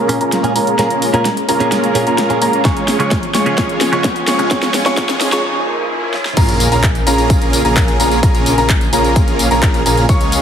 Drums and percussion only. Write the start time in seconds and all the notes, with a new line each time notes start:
0.09 open hi-hat
0.21 closed hi-hat
0.32 snare, closed hi-hat
0.44 closed hi-hat
0.56 open hi-hat
0.67 closed hi-hat
0.79 snare, closed hi-hat
0.90 closed hi-hat
1.02 open hi-hat
1.14 closed hi-hat
1.25 snare, closed hi-hat
1.37 closed hi-hat
1.49 open hi-hat
1.60 closed hi-hat
1.72 snare, closed hi-hat
1.84 closed hi-hat
1.95 open hi-hat
2.07 closed hi-hat
2.18 snare, closed hi-hat
2.30 closed hi-hat
2.42 open hi-hat
2.53 closed hi-hat
2.65 kick, snare, closed hi-hat
2.77 closed hi-hat
2.88 snare, open hi-hat
3.00 closed hi-hat
3.11 kick, snare, closed hi-hat
3.23 closed hi-hat
3.34 snare, open hi-hat
3.46 closed hi-hat
3.58 kick, snare, closed hi-hat
3.69 closed hi-hat
3.81 snare, open hi-hat
3.93 closed hi-hat
4.04 kick, snare, closed hi-hat
4.16 closed hi-hat
4.27 snare, open hi-hat
4.39 closed hi-hat
4.51 kick, snare, closed hi-hat
4.63 snare, closed hi-hat
4.74 snare, open hi-hat
4.86 snare, closed hi-hat
4.97 kick, snare, closed hi-hat
5.09 snare, closed hi-hat
5.21 snare, open hi-hat
5.32 snare, closed hi-hat
6.14 snare
6.25 snare
6.37 kick, closed hi-hat, crash, tambourine
6.49 closed hi-hat, tambourine
6.60 open hi-hat, tambourine
6.72 closed hi-hat, tambourine
6.83 kick, clap, closed hi-hat, tambourine
6.95 closed hi-hat, tambourine
7.07 open hi-hat, tambourine
7.18 closed hi-hat, tambourine
7.30 kick, closed hi-hat, tambourine
7.42 closed hi-hat, tambourine
7.53 open hi-hat, tambourine
7.65 closed hi-hat, tambourine
7.76 kick, clap, closed hi-hat, tambourine
7.88 closed hi-hat, tambourine
8.00 open hi-hat, tambourine
8.11 closed hi-hat, tambourine
8.23 kick, closed hi-hat, tambourine
8.35 closed hi-hat, tambourine
8.46 open hi-hat, tambourine
8.58 closed hi-hat, tambourine
8.69 kick, clap, closed hi-hat, tambourine
8.81 closed hi-hat, tambourine
8.93 open hi-hat, tambourine
9.04 closed hi-hat, tambourine
9.16 kick, closed hi-hat, tambourine
9.28 closed hi-hat, tambourine
9.39 open hi-hat, tambourine
9.51 closed hi-hat, tambourine
9.63 kick, clap, closed hi-hat, tambourine
9.74 closed hi-hat, tambourine
9.86 open hi-hat, tambourine
9.97 closed hi-hat, tambourine
10.09 kick, closed hi-hat, tambourine
10.21 closed hi-hat, tambourine
10.32 open hi-hat, tambourine